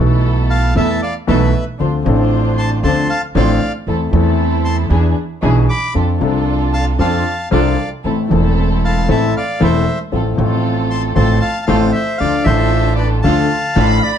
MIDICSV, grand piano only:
0, 0, Header, 1, 2, 480
1, 0, Start_track
1, 0, Key_signature, 0, "minor"
1, 0, Tempo, 520382
1, 1662, Time_signature, 4, 2, 24, 8
1, 13081, End_track
2, 0, Start_track
2, 0, Title_t, "Grand piano"
2, 0, Program_c, 0, 0
2, 0, Note_on_c, 0, 35, 58
2, 0, Note_on_c, 0, 47, 64
2, 0, Note_on_c, 0, 52, 55
2, 0, Note_on_c, 0, 57, 48
2, 0, Note_on_c, 0, 59, 48
2, 0, Note_on_c, 0, 69, 57
2, 657, Note_off_c, 0, 52, 0
2, 663, Note_off_c, 0, 57, 0
2, 665, Note_off_c, 0, 35, 0
2, 665, Note_off_c, 0, 47, 0
2, 667, Note_off_c, 0, 59, 0
2, 676, Note_off_c, 0, 69, 0
2, 696, Note_on_c, 0, 52, 67
2, 700, Note_on_c, 0, 57, 54
2, 700, Note_on_c, 0, 59, 50
2, 701, Note_on_c, 0, 40, 66
2, 705, Note_on_c, 0, 69, 61
2, 903, Note_off_c, 0, 52, 0
2, 904, Note_off_c, 0, 40, 0
2, 904, Note_off_c, 0, 57, 0
2, 904, Note_off_c, 0, 59, 0
2, 906, Note_off_c, 0, 69, 0
2, 1174, Note_on_c, 0, 47, 70
2, 1174, Note_on_c, 0, 52, 66
2, 1175, Note_on_c, 0, 57, 63
2, 1176, Note_on_c, 0, 35, 79
2, 1177, Note_on_c, 0, 59, 58
2, 1178, Note_on_c, 0, 69, 69
2, 1380, Note_off_c, 0, 35, 0
2, 1380, Note_off_c, 0, 47, 0
2, 1380, Note_off_c, 0, 52, 0
2, 1380, Note_off_c, 0, 57, 0
2, 1381, Note_off_c, 0, 59, 0
2, 1381, Note_off_c, 0, 69, 0
2, 1656, Note_on_c, 0, 50, 46
2, 1657, Note_on_c, 0, 38, 48
2, 1657, Note_on_c, 0, 53, 39
2, 1658, Note_on_c, 0, 60, 33
2, 1659, Note_on_c, 0, 62, 38
2, 1664, Note_on_c, 0, 69, 41
2, 1861, Note_off_c, 0, 38, 0
2, 1861, Note_off_c, 0, 50, 0
2, 1861, Note_off_c, 0, 53, 0
2, 1861, Note_off_c, 0, 60, 0
2, 1862, Note_off_c, 0, 62, 0
2, 1865, Note_off_c, 0, 69, 0
2, 1883, Note_on_c, 0, 53, 59
2, 1894, Note_on_c, 0, 60, 52
2, 1902, Note_on_c, 0, 33, 64
2, 1904, Note_on_c, 0, 45, 64
2, 1910, Note_on_c, 0, 62, 53
2, 1920, Note_on_c, 0, 69, 63
2, 2576, Note_off_c, 0, 53, 0
2, 2581, Note_off_c, 0, 60, 0
2, 2585, Note_off_c, 0, 33, 0
2, 2586, Note_off_c, 0, 45, 0
2, 2589, Note_off_c, 0, 62, 0
2, 2594, Note_off_c, 0, 69, 0
2, 2616, Note_on_c, 0, 53, 58
2, 2618, Note_on_c, 0, 60, 54
2, 2619, Note_on_c, 0, 38, 70
2, 2619, Note_on_c, 0, 50, 67
2, 2622, Note_on_c, 0, 69, 62
2, 2624, Note_on_c, 0, 62, 52
2, 2819, Note_off_c, 0, 53, 0
2, 2821, Note_off_c, 0, 38, 0
2, 2821, Note_off_c, 0, 50, 0
2, 2821, Note_off_c, 0, 60, 0
2, 2822, Note_off_c, 0, 69, 0
2, 2823, Note_off_c, 0, 62, 0
2, 3089, Note_on_c, 0, 53, 64
2, 3091, Note_on_c, 0, 60, 61
2, 3092, Note_on_c, 0, 62, 59
2, 3094, Note_on_c, 0, 33, 80
2, 3095, Note_on_c, 0, 45, 79
2, 3095, Note_on_c, 0, 69, 74
2, 3294, Note_off_c, 0, 53, 0
2, 3295, Note_off_c, 0, 60, 0
2, 3296, Note_off_c, 0, 62, 0
2, 3297, Note_off_c, 0, 33, 0
2, 3297, Note_off_c, 0, 45, 0
2, 3297, Note_off_c, 0, 69, 0
2, 3575, Note_on_c, 0, 52, 47
2, 3579, Note_on_c, 0, 57, 39
2, 3579, Note_on_c, 0, 60, 40
2, 3580, Note_on_c, 0, 40, 49
2, 3581, Note_on_c, 0, 69, 45
2, 3778, Note_off_c, 0, 52, 0
2, 3779, Note_off_c, 0, 57, 0
2, 3779, Note_off_c, 0, 60, 0
2, 3780, Note_off_c, 0, 40, 0
2, 3780, Note_off_c, 0, 69, 0
2, 3793, Note_on_c, 0, 52, 57
2, 3803, Note_on_c, 0, 57, 53
2, 3807, Note_off_c, 0, 52, 0
2, 3811, Note_on_c, 0, 40, 64
2, 3813, Note_on_c, 0, 52, 68
2, 3817, Note_on_c, 0, 60, 51
2, 3830, Note_on_c, 0, 69, 63
2, 4487, Note_off_c, 0, 57, 0
2, 4491, Note_off_c, 0, 40, 0
2, 4492, Note_off_c, 0, 52, 0
2, 4494, Note_off_c, 0, 60, 0
2, 4501, Note_off_c, 0, 69, 0
2, 4530, Note_on_c, 0, 59, 54
2, 4531, Note_on_c, 0, 52, 71
2, 4532, Note_on_c, 0, 40, 70
2, 4535, Note_on_c, 0, 62, 52
2, 4536, Note_on_c, 0, 68, 60
2, 4730, Note_off_c, 0, 59, 0
2, 4731, Note_off_c, 0, 40, 0
2, 4732, Note_off_c, 0, 52, 0
2, 4733, Note_off_c, 0, 62, 0
2, 4733, Note_off_c, 0, 68, 0
2, 5002, Note_on_c, 0, 59, 60
2, 5004, Note_on_c, 0, 35, 76
2, 5004, Note_on_c, 0, 52, 68
2, 5005, Note_on_c, 0, 47, 69
2, 5009, Note_on_c, 0, 62, 54
2, 5009, Note_on_c, 0, 68, 74
2, 5208, Note_off_c, 0, 59, 0
2, 5209, Note_off_c, 0, 35, 0
2, 5209, Note_off_c, 0, 47, 0
2, 5209, Note_off_c, 0, 52, 0
2, 5211, Note_off_c, 0, 62, 0
2, 5211, Note_off_c, 0, 68, 0
2, 5482, Note_on_c, 0, 53, 44
2, 5484, Note_on_c, 0, 41, 46
2, 5484, Note_on_c, 0, 60, 38
2, 5485, Note_on_c, 0, 62, 34
2, 5488, Note_on_c, 0, 69, 41
2, 5688, Note_off_c, 0, 41, 0
2, 5688, Note_off_c, 0, 60, 0
2, 5689, Note_off_c, 0, 53, 0
2, 5689, Note_off_c, 0, 62, 0
2, 5691, Note_off_c, 0, 69, 0
2, 5711, Note_on_c, 0, 53, 54
2, 5724, Note_on_c, 0, 60, 49
2, 5728, Note_on_c, 0, 48, 61
2, 5730, Note_on_c, 0, 36, 64
2, 5736, Note_on_c, 0, 62, 49
2, 5749, Note_on_c, 0, 69, 63
2, 6406, Note_off_c, 0, 53, 0
2, 6413, Note_off_c, 0, 60, 0
2, 6415, Note_off_c, 0, 48, 0
2, 6416, Note_off_c, 0, 36, 0
2, 6419, Note_off_c, 0, 62, 0
2, 6425, Note_off_c, 0, 69, 0
2, 6447, Note_on_c, 0, 62, 51
2, 6448, Note_on_c, 0, 41, 63
2, 6448, Note_on_c, 0, 53, 65
2, 6448, Note_on_c, 0, 60, 47
2, 6451, Note_on_c, 0, 69, 58
2, 6653, Note_off_c, 0, 60, 0
2, 6653, Note_off_c, 0, 62, 0
2, 6654, Note_off_c, 0, 41, 0
2, 6654, Note_off_c, 0, 53, 0
2, 6655, Note_off_c, 0, 69, 0
2, 6927, Note_on_c, 0, 60, 57
2, 6929, Note_on_c, 0, 36, 76
2, 6929, Note_on_c, 0, 53, 66
2, 6932, Note_on_c, 0, 48, 72
2, 6933, Note_on_c, 0, 62, 55
2, 6933, Note_on_c, 0, 69, 70
2, 7137, Note_off_c, 0, 60, 0
2, 7138, Note_off_c, 0, 36, 0
2, 7138, Note_off_c, 0, 53, 0
2, 7139, Note_off_c, 0, 48, 0
2, 7140, Note_off_c, 0, 62, 0
2, 7140, Note_off_c, 0, 69, 0
2, 7423, Note_on_c, 0, 57, 36
2, 7425, Note_on_c, 0, 60, 34
2, 7426, Note_on_c, 0, 52, 38
2, 7428, Note_on_c, 0, 33, 40
2, 7428, Note_on_c, 0, 45, 43
2, 7430, Note_on_c, 0, 69, 39
2, 7628, Note_off_c, 0, 52, 0
2, 7628, Note_off_c, 0, 57, 0
2, 7629, Note_off_c, 0, 60, 0
2, 7631, Note_off_c, 0, 33, 0
2, 7631, Note_off_c, 0, 45, 0
2, 7632, Note_off_c, 0, 69, 0
2, 7642, Note_on_c, 0, 52, 53
2, 7660, Note_on_c, 0, 28, 65
2, 7660, Note_on_c, 0, 40, 64
2, 7660, Note_on_c, 0, 57, 48
2, 7672, Note_on_c, 0, 60, 47
2, 7679, Note_on_c, 0, 69, 57
2, 8341, Note_off_c, 0, 52, 0
2, 8350, Note_off_c, 0, 57, 0
2, 8351, Note_off_c, 0, 28, 0
2, 8351, Note_off_c, 0, 40, 0
2, 8356, Note_off_c, 0, 60, 0
2, 8360, Note_off_c, 0, 69, 0
2, 8380, Note_on_c, 0, 57, 55
2, 8381, Note_on_c, 0, 52, 57
2, 8382, Note_on_c, 0, 45, 64
2, 8383, Note_on_c, 0, 33, 64
2, 8385, Note_on_c, 0, 60, 50
2, 8388, Note_on_c, 0, 69, 64
2, 8586, Note_off_c, 0, 57, 0
2, 8587, Note_off_c, 0, 45, 0
2, 8587, Note_off_c, 0, 52, 0
2, 8588, Note_off_c, 0, 33, 0
2, 8589, Note_off_c, 0, 60, 0
2, 8590, Note_off_c, 0, 69, 0
2, 8854, Note_on_c, 0, 52, 66
2, 8857, Note_on_c, 0, 40, 76
2, 8857, Note_on_c, 0, 57, 57
2, 8857, Note_on_c, 0, 60, 58
2, 8858, Note_on_c, 0, 69, 70
2, 8861, Note_on_c, 0, 28, 71
2, 9063, Note_off_c, 0, 52, 0
2, 9064, Note_off_c, 0, 57, 0
2, 9064, Note_off_c, 0, 60, 0
2, 9065, Note_off_c, 0, 40, 0
2, 9065, Note_off_c, 0, 69, 0
2, 9066, Note_off_c, 0, 28, 0
2, 9334, Note_on_c, 0, 53, 41
2, 9336, Note_on_c, 0, 33, 46
2, 9337, Note_on_c, 0, 45, 47
2, 9337, Note_on_c, 0, 60, 33
2, 9338, Note_on_c, 0, 57, 33
2, 9338, Note_on_c, 0, 69, 47
2, 9539, Note_off_c, 0, 53, 0
2, 9541, Note_off_c, 0, 33, 0
2, 9542, Note_off_c, 0, 45, 0
2, 9542, Note_off_c, 0, 57, 0
2, 9542, Note_off_c, 0, 60, 0
2, 9542, Note_off_c, 0, 69, 0
2, 9552, Note_on_c, 0, 53, 58
2, 9566, Note_on_c, 0, 57, 50
2, 9570, Note_on_c, 0, 45, 64
2, 9573, Note_on_c, 0, 33, 60
2, 9579, Note_on_c, 0, 60, 52
2, 9589, Note_on_c, 0, 69, 58
2, 10251, Note_off_c, 0, 53, 0
2, 10258, Note_off_c, 0, 57, 0
2, 10259, Note_off_c, 0, 45, 0
2, 10261, Note_off_c, 0, 33, 0
2, 10264, Note_off_c, 0, 60, 0
2, 10269, Note_off_c, 0, 69, 0
2, 10287, Note_on_c, 0, 53, 60
2, 10290, Note_on_c, 0, 57, 57
2, 10291, Note_on_c, 0, 45, 69
2, 10293, Note_on_c, 0, 60, 53
2, 10294, Note_on_c, 0, 33, 68
2, 10298, Note_on_c, 0, 69, 63
2, 10495, Note_off_c, 0, 53, 0
2, 10497, Note_off_c, 0, 57, 0
2, 10498, Note_off_c, 0, 45, 0
2, 10498, Note_off_c, 0, 60, 0
2, 10499, Note_off_c, 0, 33, 0
2, 10501, Note_off_c, 0, 69, 0
2, 10769, Note_on_c, 0, 53, 68
2, 10769, Note_on_c, 0, 60, 61
2, 10770, Note_on_c, 0, 45, 76
2, 10770, Note_on_c, 0, 57, 61
2, 10771, Note_on_c, 0, 69, 76
2, 10772, Note_on_c, 0, 33, 77
2, 10976, Note_off_c, 0, 45, 0
2, 10976, Note_off_c, 0, 53, 0
2, 10976, Note_off_c, 0, 57, 0
2, 10976, Note_off_c, 0, 60, 0
2, 10977, Note_off_c, 0, 33, 0
2, 10977, Note_off_c, 0, 69, 0
2, 11253, Note_on_c, 0, 53, 39
2, 11254, Note_on_c, 0, 57, 37
2, 11255, Note_on_c, 0, 62, 35
2, 11256, Note_on_c, 0, 38, 48
2, 11256, Note_on_c, 0, 50, 45
2, 11256, Note_on_c, 0, 69, 41
2, 11457, Note_off_c, 0, 53, 0
2, 11457, Note_off_c, 0, 57, 0
2, 11457, Note_off_c, 0, 62, 0
2, 11458, Note_off_c, 0, 38, 0
2, 11458, Note_off_c, 0, 50, 0
2, 11458, Note_off_c, 0, 69, 0
2, 11478, Note_on_c, 0, 53, 60
2, 11488, Note_on_c, 0, 57, 48
2, 11496, Note_on_c, 0, 45, 65
2, 11497, Note_on_c, 0, 33, 70
2, 11502, Note_on_c, 0, 62, 55
2, 11517, Note_on_c, 0, 69, 67
2, 12168, Note_off_c, 0, 53, 0
2, 12173, Note_off_c, 0, 57, 0
2, 12177, Note_off_c, 0, 33, 0
2, 12177, Note_off_c, 0, 45, 0
2, 12180, Note_off_c, 0, 62, 0
2, 12187, Note_off_c, 0, 69, 0
2, 12207, Note_on_c, 0, 53, 60
2, 12210, Note_on_c, 0, 38, 68
2, 12210, Note_on_c, 0, 62, 60
2, 12212, Note_on_c, 0, 57, 57
2, 12213, Note_on_c, 0, 50, 72
2, 12214, Note_on_c, 0, 69, 64
2, 12412, Note_off_c, 0, 53, 0
2, 12413, Note_off_c, 0, 38, 0
2, 12413, Note_off_c, 0, 62, 0
2, 12414, Note_off_c, 0, 57, 0
2, 12415, Note_off_c, 0, 50, 0
2, 12415, Note_off_c, 0, 69, 0
2, 12689, Note_on_c, 0, 53, 66
2, 12690, Note_on_c, 0, 57, 62
2, 12692, Note_on_c, 0, 45, 80
2, 12693, Note_on_c, 0, 62, 57
2, 12693, Note_on_c, 0, 69, 68
2, 12694, Note_on_c, 0, 33, 79
2, 12894, Note_off_c, 0, 53, 0
2, 12895, Note_off_c, 0, 45, 0
2, 12895, Note_off_c, 0, 57, 0
2, 12896, Note_off_c, 0, 33, 0
2, 12896, Note_off_c, 0, 62, 0
2, 12896, Note_off_c, 0, 69, 0
2, 13081, End_track
0, 0, End_of_file